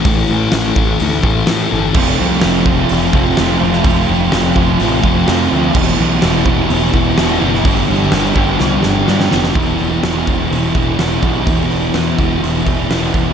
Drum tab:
CC |----------------|x---------------|----------------|x---------------|
HH |o---o---o---o---|----o---o---o---|o---o---o---o---|----o---o---o---|
SD |----o-------o---|----o-------o--o|----o-------o---|----o-------o--o|
BD |o-----o---o-----|o-----o---o-----|o-----o---o-----|o-----o---o-----|

CC |----------------|----------------|----------------|
HH |o---o-----------|o-o-o-o-o-o-o-o-|o-o-o-o-o-o-o-o-|
SD |----o---o-o-oooo|----o-------o---|----o-------o---|
BD |o-----o---------|o-----o---o---o-|o-----o---o---o-|